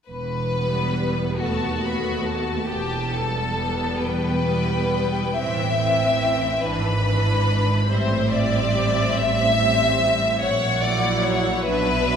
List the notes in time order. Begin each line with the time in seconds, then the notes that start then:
0.08 E1 E2 B4
0.54 G3 B3
1.40 D#2 A3 B3 F#4 A5
1.83 A3 B3 B5
2.28 A5
2.68 E1 E2 G4
3.13 G3 B3 A4
3.99 E1 E2 B4 G5
4.44 G3 B3
5.36 A1 A2 E3 C4 E5
5.81 E3 C4
6.63 G#1 G#2 E3 D4 B4 B5
7.06 E3 D4
7.89 A1 A2 G3 C4 C5 E5
8.32 G3 C4 D5
9.16 A1 A2 E5
9.59 G3 C4
10.41 A#1 A#2 C#5 F#5
10.83 F#3 E4 D5
11.25 C#5
11.65 B1 B2 F#3 D4 B4 E5
12.09 F#3 D4